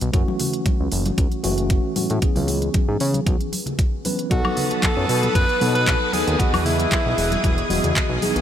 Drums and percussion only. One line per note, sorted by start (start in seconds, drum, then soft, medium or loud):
0.01 closed hi-hat soft
0.14 kick loud
0.14 closed hi-hat medium
0.28 high conga medium
0.40 open hi-hat loud
0.40 low conga medium
0.53 closed hi-hat soft
0.66 kick loud
0.66 closed hi-hat medium
0.66 high conga medium
0.92 open hi-hat loud
1.06 closed hi-hat soft
1.06 high conga medium
1.18 kick loud
1.18 closed hi-hat medium
1.32 closed hi-hat soft
1.44 open hi-hat loud
1.44 high conga medium
1.58 closed hi-hat soft
1.70 kick loud
1.70 closed hi-hat medium
1.96 open hi-hat loud
1.96 high conga medium
2.10 closed hi-hat soft
2.22 kick loud
2.22 closed hi-hat medium
2.36 open hi-hat medium
2.36 high conga medium
2.47 open hi-hat loud
2.47 low conga medium
2.62 closed hi-hat soft
2.74 kick loud
2.74 closed hi-hat medium
2.74 high conga medium
3.00 open hi-hat loud
3.14 closed hi-hat soft
3.14 high conga medium
3.27 kick loud
3.27 closed hi-hat medium
3.41 closed hi-hat soft
3.52 open hi-hat loud
3.52 high conga medium
3.66 closed hi-hat soft
3.66 low conga medium
3.79 kick loud
3.79 closed hi-hat medium
4.05 open hi-hat loud
4.05 high conga medium
4.19 closed hi-hat soft
4.31 kick loud
4.31 closed hi-hat medium
4.45 high conga medium
4.45 high woodblock medium
4.57 open hi-hat loud
4.57 low conga medium
4.71 closed hi-hat soft
4.71 muted conga medium
4.82 kick loud
4.82 clap loud
4.82 closed hi-hat medium
4.82 high conga medium
5.09 open hi-hat loud
5.23 closed hi-hat soft
5.23 high conga medium
5.35 kick loud
5.35 closed hi-hat medium
5.49 closed hi-hat soft
5.61 open hi-hat loud
5.61 muted conga soft
5.61 high conga medium
5.75 closed hi-hat soft
5.87 kick loud
5.87 clap loud
5.87 closed hi-hat medium
6.13 open hi-hat loud
6.13 high conga medium
6.28 closed hi-hat soft
6.40 kick loud
6.40 closed hi-hat medium
6.54 open hi-hat medium
6.54 high conga medium
6.54 high woodblock medium
6.65 open hi-hat medium
6.65 low conga medium
6.79 closed hi-hat medium
6.79 muted conga medium
6.92 kick loud
6.92 clap loud
6.92 closed hi-hat medium
6.92 high conga medium
7.18 open hi-hat loud
7.32 closed hi-hat soft
7.32 high conga medium
7.44 kick loud
7.44 closed hi-hat medium
7.58 closed hi-hat soft
7.70 open hi-hat loud
7.70 high conga medium
7.84 closed hi-hat medium
7.84 low conga medium
7.96 kick loud
7.96 clap loud
7.96 closed hi-hat medium
8.22 open hi-hat loud
8.22 high conga medium
8.36 closed hi-hat medium
8.36 muted conga medium